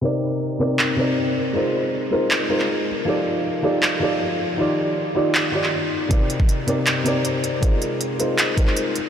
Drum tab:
HH |----------------|----------------|----------------|----------------|
CP |--------x-------|--------x--x----|--------x-------|--------x--x----|
BD |----------------|----------------|----------------|----------------|

HH |x-x-x-x-x-x-x-x-|x-x-x-x-x-x-x-x-|
CP |--------x-------|--------x--x----|
BD |o--o------------|o---------o-----|